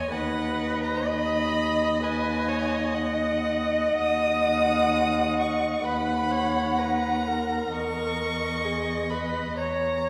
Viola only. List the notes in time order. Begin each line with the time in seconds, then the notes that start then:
0.12 B4
1.07 D#5
2.03 B4
2.48 C#5
2.94 D#5
5.85 B4
6.31 C#5
6.79 B4
7.27 A#4
8.65 G#4
9.11 B4
9.57 C#5
10.04 C#5